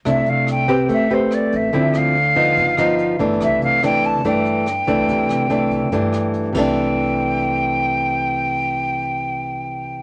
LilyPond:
<<
  \new Staff \with { instrumentName = "Flute" } { \time 4/4 \key c \major \tempo 4 = 144 e''8 f''8 g''4 e''8 c''8 d''8 e''8~ | e''8 f''2. r8 | e''8 f''8 g''8 a''8 g''2~ | g''2. r8 g''8~ |
g''1~ | g''1 | }
  \new Staff \with { instrumentName = "Nylon-string guitar" } { \time 4/4 \key c \major << { <a d' e'>4. <c' g' b'>4 <c' g' b'>4. | <f c' e'>4 r8 <f b ees'>4 <f b ees'>4 <e a d'>8~ | <e a d'>4 <e a d'>4 <e a d'>4 r8 <e a d'>8~ | <e a d'>4 <e a d'>4 <e a d'>4. <c e a d'>8~ |
<c e a d'>1~ | <c e a d'>1 | } \\ { c2 a2 | d2 g,2 | c2 g,2 | c2 g,4. r8 |
r1 | r1 | } >> }
  \new Staff \with { instrumentName = "Upright bass" } { \clef bass \time 4/4 \key c \major c,8 c,4. a,,4. a,,8 | d,8 d,4. g,,4. g,,8 | c,8 c,4. g,4. c,8 | c,8 c,4. g,4. c,8~ |
c,1~ | c,1 | }
  \new DrumStaff \with { instrumentName = "Drums" } \drummode { \time 4/4 <hh bd ss>8 hh8 <hh ss>8 hh8 <hh bd>8 hh8 <hh ss>8 hh8 | <hh bd>8 <hh ss>8 hh8 hh8 <hh bd>8 <hh ss>8 hh8 hh8 | <hh bd ss>8 hh8 <hh ss>8 hh8 <hh bd>8 hh8 <hh ss>8 hh8 | <hh bd>8 <hh ss>8 hh8 <hh bd>8 <hh bd>8 <hh ss>8 hh8 <cymc bd>8 |
r4 r4 r4 r4 | r4 r4 r4 r4 | }
>>